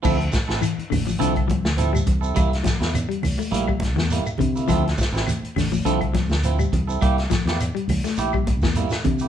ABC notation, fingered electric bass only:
X:1
M:4/4
L:1/16
Q:"Swing 16ths" 1/4=103
K:Dm
V:1 name="Fingered electric bass" clef=bass
D,,2 z A,,, z2 A,,,2 C,,3 D,,3 C,,2 | C,,2 z E,,2 z C,, z B,,,3 E,,2 z C,2 | D,,2 z A,,, z2 A,,,2 C,,3 D,,3 C,,2 | C,,2 z E,,2 z C,, z B,,,3 E,,2 z C,2 |]